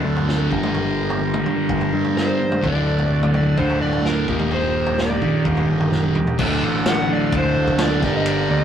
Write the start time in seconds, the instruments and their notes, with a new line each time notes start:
Already playing: distorted electric guitar D2 A2 D3, transistor combo organ F#3 A3 F#4 A4
0.04 picked electric bass D2
0.16 floor tom
0.29 snare
0.49 picked electric bass G1, distorted electric guitar G2 D3, transistor combo organ G3 A#3 G4 A#4, kick
0.54 distorted electric guitar G3
0.63 mid tom
0.75 floor tom
1.10 floor tom
1.34 mid tom
1.45 distorted electric guitar G2 D3 G3, floor tom
1.69 picked electric bass G1, kick
1.81 floor tom
1.93 picked electric bass G2
2.05 floor tom
2.17 electric slide guitar C5, snare
2.52 mid tom
2.61 picked electric bass D1, distorted electric guitar D2 A2, transistor combo organ A3 A4, electric slide guitar D5, kick, floor tom
2.65 distorted electric guitar D3, transistor combo organ F#3 F#4
2.99 floor tom
3.23 mid tom
3.34 electric slide guitar D5, floor tom
3.56 picked electric bass D1, distorted electric guitar D2 A2 D3, electric slide guitar C5, kick
3.70 floor tom
3.82 picked electric bass D1, electric slide guitar D5
3.93 floor tom
4.05 electric slide guitar A#4, snare
4.26 picked electric bass D#1, distorted electric guitar D#2 A#2 D#3, transistor combo organ G3 A#3 D4 D#4 G4, kick
4.39 mid tom
4.51 electric slide guitar C5, floor tom
4.86 floor tom
4.98 electric slide guitar D5, snare
5.10 mid tom
5.21 distorted electric guitar D#2 A#2 D#3, kick, floor tom
5.45 picked electric bass D#1, kick
5.57 floor tom
5.69 picked electric bass G1
5.80 floor tom
5.92 picked electric bass F#1, snare
6.04 high tom
6.15 picked electric bass D#1, mid tom
6.27 floor tom
6.38 picked electric bass D1, distorted electric guitar D2 A2 D3, transistor combo organ F#3 A3 F#4 A4, kick, crash
6.64 picked electric bass A1
6.86 electric slide guitar F#5, snare, ride bell
7.08 distorted electric guitar D2 A2 D3
7.13 electric slide guitar D5
7.32 picked electric bass D1, kick, ride bell
7.38 electric slide guitar C5
7.57 picked electric bass D1
7.68 kick
7.79 electric slide guitar D5, snare, ride bell
8.01 picked electric bass G1, distorted electric guitar G2 D3, transistor combo organ G3 A#3 G4 A#4, kick, snare
8.05 distorted electric guitar G3, electric slide guitar D5
8.17 electric slide guitar D#5
8.26 electric slide guitar D5, ride bell
8.50 picked electric bass D2, electric slide guitar D5
8.62 electric slide guitar D#5